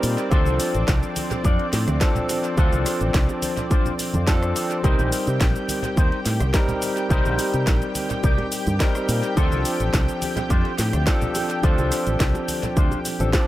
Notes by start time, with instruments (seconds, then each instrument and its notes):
Already playing: tine electric piano G3 C4 D#4 A#4, analog synth pad C4 D5
0.03 fingered electric bass A#2, muted clean electric guitar stroke, open hi-hat, cabasa
0.18 closed hi-hat, cabasa
0.30 fingered electric bass D2, tine electric piano F3 C4 D4 A4, clean electric guitar D4 F4 A4 C5, kick, closed hi-hat, high bongo, cabasa
0.45 fingered electric bass C2, closed hi-hat, high conga, cabasa
0.60 open hi-hat, cabasa
0.74 fingered electric bass A1, closed hi-hat, cabasa
0.88 fingered electric bass C2, kick, snare, closed hi-hat, high bongo, cabasa
1.03 closed hi-hat, cabasa
1.16 muted clean electric guitar stroke, open hi-hat, high conga, cabasa
1.30 muted clean electric guitar stroke, closed hi-hat, high bongo, low conga, cabasa
1.43 fingered electric bass F2, clean electric guitar D4 F4 A4 D5, kick, closed hi-hat, cabasa
1.59 closed hi-hat
1.73 fingered electric bass A2, snare, open hi-hat, cabasa
1.87 fingered electric bass D2, muted clean electric guitar stroke, cross-stick, closed hi-hat, high bongo, high conga, cabasa
2.00 tine electric piano F3 C4 D4 A4, muted clean electric guitar stroke, kick, snare, closed hi-hat, cabasa
2.15 closed hi-hat, low conga, cabasa
2.29 muted clean electric guitar stroke, open hi-hat, high bongo, cabasa
2.44 closed hi-hat, cabasa
2.57 fingered electric bass D2, tine electric piano F3 C4 D4 A4, clean electric guitar D4 F4 A4 C5, kick, closed hi-hat, cabasa
2.72 fingered electric bass C2, closed hi-hat, high conga, cabasa
2.86 cross-stick, open hi-hat, high bongo, cabasa
3.01 fingered electric bass A1, closed hi-hat, cabasa
3.14 fingered electric bass C2, kick, snare, closed hi-hat, cabasa
3.29 closed hi-hat, high bongo, cabasa
3.42 muted clean electric guitar stroke, open hi-hat, high conga, cabasa
3.57 muted clean electric guitar stroke, closed hi-hat, low conga, cabasa
3.70 clean electric guitar D4 F4 A4 C5, kick, closed hi-hat, cabasa
3.86 closed hi-hat, high bongo, low conga, cabasa
3.99 open hi-hat, cabasa
4.13 fingered electric bass F2, muted clean electric guitar stroke, closed hi-hat, high conga, cabasa
4.27 tine electric piano F3 C4 D4 A4, kick, snare, closed hi-hat, high bongo, cabasa
4.42 cross-stick, closed hi-hat, cabasa
4.55 muted clean electric guitar stroke, open hi-hat, cabasa
4.71 closed hi-hat, cabasa
4.83 fingered electric bass C2, tine electric piano G3 C4 D#4 A#4, clean electric guitar D#4 G4 A#4 C5, analog synth pad G4 G5, kick, closed hi-hat, cabasa
4.99 fingered electric bass A#1, closed hi-hat, high bongo, high conga, cabasa
5.12 open hi-hat, cabasa
5.27 fingered electric bass C3, closed hi-hat, cabasa
5.41 fingered electric bass A#1, kick, snare, closed hi-hat, high bongo, cabasa
5.56 closed hi-hat, cabasa
5.68 muted clean electric guitar stroke, open hi-hat, high conga, cabasa
5.83 muted clean electric guitar stroke, closed hi-hat, low conga, cabasa
5.96 fingered electric bass D#2, clean electric guitar D#4 G4 A#4 C5, kick, closed hi-hat, high bongo, cabasa
6.12 closed hi-hat
6.26 fingered electric bass A2, snare, open hi-hat, cabasa
6.40 fingered electric bass C2, muted clean electric guitar stroke, cross-stick, closed hi-hat, high bongo, high conga, cabasa
6.53 tine electric piano G3 C4 D#4 A#4, muted clean electric guitar stroke, kick, snare, closed hi-hat, cabasa
6.68 closed hi-hat, low conga, cabasa
6.82 muted clean electric guitar stroke, open hi-hat, cabasa
6.96 closed hi-hat, high bongo, cabasa
7.09 fingered electric bass C2, tine electric piano G3 C4 D#4 A#4, clean electric guitar D#4 G4 A#4 C5, kick, closed hi-hat, cabasa
7.25 fingered electric bass A#1, closed hi-hat, high conga, cabasa
7.39 open hi-hat, high bongo, cabasa
7.54 fingered electric bass C3, closed hi-hat, cabasa
7.67 fingered electric bass A#1, kick, snare, closed hi-hat, cabasa
7.82 closed hi-hat, cabasa
7.95 muted clean electric guitar stroke, open hi-hat, high bongo, high conga, cabasa
8.09 muted clean electric guitar stroke, closed hi-hat, low conga, cabasa
8.23 fingered electric bass C2, clean electric guitar D#4 G4 A#4 D5, kick, closed hi-hat, cabasa
8.38 closed hi-hat, high bongo, low conga
8.52 open hi-hat, cabasa
8.66 fingered electric bass G2, muted clean electric guitar stroke, closed hi-hat, high conga, cabasa
8.80 tine electric piano G3 C4 D#4 A#4, muted clean electric guitar stroke, kick, snare, closed hi-hat, cabasa
8.95 cross-stick, closed hi-hat, high bongo, cabasa
9.08 fingered electric bass A#2, muted clean electric guitar stroke, open hi-hat, cabasa
9.24 closed hi-hat, cabasa
9.36 fingered electric bass D2, tine electric piano F3 C4 D4 A4, clean electric guitar D4 F4 A4 C5, kick, closed hi-hat, high bongo, cabasa
9.52 fingered electric bass C2, closed hi-hat, high conga, cabasa
9.65 open hi-hat, cabasa
9.80 fingered electric bass A1, closed hi-hat, cabasa
9.93 fingered electric bass C2, kick, snare, closed hi-hat, high bongo, cabasa
10.08 closed hi-hat, cabasa
10.21 muted clean electric guitar stroke, open hi-hat, high conga, cabasa
10.36 muted clean electric guitar stroke, closed hi-hat, high bongo, low conga, cabasa
10.49 fingered electric bass F2, clean electric guitar D4 F4 A4 C5, kick, closed hi-hat, cabasa
10.65 closed hi-hat
10.78 fingered electric bass A2, snare, open hi-hat, cabasa
10.93 fingered electric bass D2, muted clean electric guitar stroke, cross-stick, closed hi-hat, high bongo, high conga, cabasa
11.06 tine electric piano F3 C4 D4 A4, muted clean electric guitar stroke, kick, snare, closed hi-hat, cabasa
11.22 closed hi-hat, low conga, cabasa
11.34 muted clean electric guitar stroke, open hi-hat, high bongo, cabasa
11.50 closed hi-hat, cabasa
11.63 fingered electric bass D2, tine electric piano F3 C4 D4 A4, clean electric guitar D4 F4 A4 C5, kick, closed hi-hat, cabasa
11.78 fingered electric bass C2, closed hi-hat, high conga, cabasa
11.92 cross-stick, open hi-hat, high bongo, cabasa
12.07 fingered electric bass A1, closed hi-hat, cabasa
12.20 fingered electric bass C2, kick, snare, closed hi-hat, cabasa
12.35 closed hi-hat, high bongo, cabasa
12.48 muted clean electric guitar stroke, open hi-hat, high conga, cabasa
12.63 muted clean electric guitar stroke, closed hi-hat, low conga, cabasa
12.76 fingered electric bass D2, clean electric guitar D4 F4 A4 C5, kick, closed hi-hat, cabasa
12.91 closed hi-hat, high bongo, low conga, cabasa
13.05 open hi-hat, cabasa
13.19 fingered electric bass A1, tine electric piano F3 C4 D4 A4, muted clean electric guitar stroke, closed hi-hat, high conga, cabasa
13.33 tine electric piano F3 C4 D4 D5, muted clean electric guitar stroke, kick, snare, closed hi-hat, high bongo, cabasa